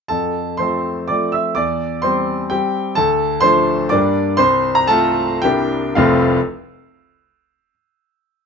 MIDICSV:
0, 0, Header, 1, 2, 480
1, 0, Start_track
1, 0, Key_signature, -1, "major"
1, 0, Tempo, 494641
1, 98, Time_signature, 3, 2, 24, 8
1, 1061, Tempo, 470588
1, 4421, Tempo, 529568
1, 6821, Tempo, 487805
1, 8222, End_track
2, 0, Start_track
2, 0, Title_t, "Grand piano"
2, 0, Program_c, 0, 0
2, 82, Note_on_c, 0, 81, 71
2, 91, Note_on_c, 0, 69, 56
2, 101, Note_on_c, 0, 41, 46
2, 281, Control_c, 0, 64, 127
2, 541, Note_off_c, 0, 69, 0
2, 557, Note_on_c, 0, 84, 77
2, 566, Note_off_c, 0, 41, 0
2, 571, Note_off_c, 0, 81, 0
2, 572, Note_on_c, 0, 72, 50
2, 583, Note_on_c, 0, 53, 41
2, 585, Note_on_c, 0, 57, 43
2, 589, Note_on_c, 0, 60, 44
2, 1023, Note_off_c, 0, 72, 0
2, 1024, Note_off_c, 0, 53, 0
2, 1024, Note_off_c, 0, 57, 0
2, 1026, Note_off_c, 0, 60, 0
2, 1044, Note_on_c, 0, 86, 68
2, 1049, Note_off_c, 0, 84, 0
2, 1054, Note_on_c, 0, 74, 52
2, 1064, Note_on_c, 0, 53, 35
2, 1070, Control_c, 0, 64, 0
2, 1072, Note_on_c, 0, 57, 34
2, 1072, Note_on_c, 0, 60, 35
2, 1287, Note_off_c, 0, 74, 0
2, 1293, Note_on_c, 0, 88, 70
2, 1300, Note_off_c, 0, 86, 0
2, 1313, Note_on_c, 0, 76, 53
2, 1507, Note_off_c, 0, 53, 0
2, 1510, Note_off_c, 0, 57, 0
2, 1510, Note_off_c, 0, 60, 0
2, 1524, Note_on_c, 0, 86, 83
2, 1532, Note_off_c, 0, 76, 0
2, 1537, Note_on_c, 0, 74, 66
2, 1538, Note_off_c, 0, 88, 0
2, 1540, Note_on_c, 0, 40, 49
2, 1757, Control_c, 0, 64, 127
2, 1985, Note_off_c, 0, 74, 0
2, 2005, Note_on_c, 0, 84, 78
2, 2006, Note_off_c, 0, 40, 0
2, 2013, Note_off_c, 0, 86, 0
2, 2017, Note_on_c, 0, 72, 61
2, 2029, Note_on_c, 0, 55, 43
2, 2032, Note_on_c, 0, 60, 48
2, 2471, Note_off_c, 0, 55, 0
2, 2472, Note_off_c, 0, 60, 0
2, 2472, Note_off_c, 0, 72, 0
2, 2493, Note_on_c, 0, 79, 72
2, 2499, Note_off_c, 0, 84, 0
2, 2506, Note_on_c, 0, 67, 55
2, 2515, Note_on_c, 0, 55, 41
2, 2516, Note_on_c, 0, 60, 42
2, 2521, Control_c, 0, 64, 0
2, 2937, Note_off_c, 0, 55, 0
2, 2938, Note_off_c, 0, 60, 0
2, 2941, Note_off_c, 0, 67, 0
2, 2959, Note_on_c, 0, 81, 97
2, 2967, Note_off_c, 0, 79, 0
2, 2970, Note_on_c, 0, 69, 68
2, 2979, Note_on_c, 0, 38, 60
2, 3181, Control_c, 0, 64, 127
2, 3412, Note_off_c, 0, 69, 0
2, 3419, Note_on_c, 0, 84, 109
2, 3430, Note_on_c, 0, 72, 86
2, 3435, Note_off_c, 0, 38, 0
2, 3439, Note_off_c, 0, 81, 0
2, 3440, Note_on_c, 0, 53, 55
2, 3446, Note_on_c, 0, 62, 56
2, 3447, Note_on_c, 0, 57, 55
2, 3900, Note_off_c, 0, 53, 0
2, 3901, Note_off_c, 0, 72, 0
2, 3903, Note_off_c, 0, 62, 0
2, 3904, Note_off_c, 0, 57, 0
2, 3916, Note_on_c, 0, 86, 89
2, 3921, Note_on_c, 0, 74, 68
2, 3931, Note_off_c, 0, 84, 0
2, 3936, Note_on_c, 0, 55, 49
2, 3938, Note_on_c, 0, 43, 61
2, 3943, Note_on_c, 0, 58, 46
2, 3949, Note_on_c, 0, 62, 43
2, 3959, Control_c, 0, 64, 0
2, 4145, Control_c, 0, 64, 127
2, 4375, Note_off_c, 0, 55, 0
2, 4375, Note_off_c, 0, 74, 0
2, 4379, Note_off_c, 0, 58, 0
2, 4382, Note_off_c, 0, 62, 0
2, 4402, Note_on_c, 0, 84, 114
2, 4403, Note_off_c, 0, 43, 0
2, 4406, Note_off_c, 0, 86, 0
2, 4411, Note_on_c, 0, 72, 85
2, 4421, Note_on_c, 0, 36, 74
2, 4431, Control_c, 0, 64, 0
2, 4592, Control_c, 0, 64, 127
2, 4729, Note_off_c, 0, 72, 0
2, 4749, Note_off_c, 0, 84, 0
2, 4750, Note_on_c, 0, 82, 96
2, 4862, Note_on_c, 0, 81, 104
2, 4866, Note_off_c, 0, 36, 0
2, 4871, Note_on_c, 0, 69, 84
2, 4875, Note_off_c, 0, 82, 0
2, 4883, Note_on_c, 0, 57, 64
2, 4885, Note_on_c, 0, 60, 60
2, 4890, Note_on_c, 0, 65, 67
2, 5329, Note_off_c, 0, 69, 0
2, 5333, Note_off_c, 0, 57, 0
2, 5334, Note_off_c, 0, 60, 0
2, 5336, Note_off_c, 0, 65, 0
2, 5354, Note_on_c, 0, 79, 94
2, 5359, Note_off_c, 0, 81, 0
2, 5372, Note_on_c, 0, 67, 67
2, 5377, Note_on_c, 0, 58, 48
2, 5378, Note_on_c, 0, 36, 64
2, 5379, Control_c, 0, 64, 0
2, 5382, Note_on_c, 0, 62, 47
2, 5387, Note_on_c, 0, 64, 47
2, 5575, Control_c, 0, 64, 127
2, 5829, Note_off_c, 0, 58, 0
2, 5829, Note_off_c, 0, 67, 0
2, 5832, Note_off_c, 0, 62, 0
2, 5834, Note_off_c, 0, 64, 0
2, 5835, Note_off_c, 0, 36, 0
2, 5840, Note_on_c, 0, 77, 74
2, 5849, Note_on_c, 0, 36, 75
2, 5850, Note_on_c, 0, 29, 92
2, 5850, Note_on_c, 0, 53, 71
2, 5851, Note_on_c, 0, 57, 68
2, 5854, Note_off_c, 0, 79, 0
2, 5855, Note_on_c, 0, 60, 81
2, 5863, Note_on_c, 0, 65, 80
2, 5870, Control_c, 0, 64, 0
2, 6012, Control_c, 0, 64, 127
2, 6113, Note_off_c, 0, 77, 0
2, 6117, Note_off_c, 0, 36, 0
2, 6118, Note_off_c, 0, 29, 0
2, 6118, Note_off_c, 0, 53, 0
2, 6119, Note_off_c, 0, 57, 0
2, 6121, Note_off_c, 0, 60, 0
2, 6125, Note_off_c, 0, 65, 0
2, 6214, Control_c, 0, 64, 0
2, 8222, End_track
0, 0, End_of_file